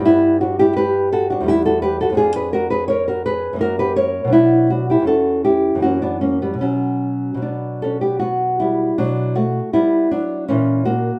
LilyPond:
\new Staff \with { instrumentName = "Nylon-string guitar" } { \time 3/4 \key b \minor \tempo 4 = 80 << { <b e'>8 <d' fis'>16 <e' g'>16 <g' b'>8 <fis' a'>16 <d' fis'>16 <e' g'>16 <fis' a'>16 <g' b'>16 <fis' a'>16 | <f' aes'>16 <aes' ces''>16 <fis' ais'>16 <aes' ces''>16 <ais' cis''>16 <fis' ais'>16 <aes' ces''>8 <fis' ais'>16 <g' b'>16 <ais' cis''>8 | <b e'>8 <d' fis'>16 <e' g'>16 <fis' a'>8 <e' g'>8 <cis' fis'>16 <b d'>16 <ais cis'>16 <g b>16 | <fis cis'>4 <b d'>8 <cis' a'>16 <b g'>16 <b fis'>8 <g e'>8 |
<fis d'>8 <a fis'>8 <g e'>8 <fis d'>8 <e cis'>8 <ais fis'>8 | } \\ { <g, g>2 <e, g b>4 | <f, ces' d'>2 <fis, ais cis'>4 | <b, fis d'>4 <e, e cis'>4 <fis, e ais>4 | <b, b>4 <b, fis>2 |
b,4 b4 ais,4 | } >> }